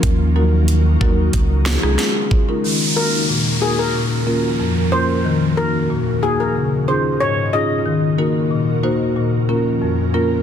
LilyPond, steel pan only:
\new Staff \with { instrumentName = "Steel pan" } { \time 4/4 \key ees \minor \tempo 4 = 92 r1 | r8 bes'16 r8. aes'16 bes'16 r4. c''16 r16 | r8 bes'16 r8. aes'16 bes'16 r8 c''16 r16 des''16 r16 ees''16 r16 | r1 | }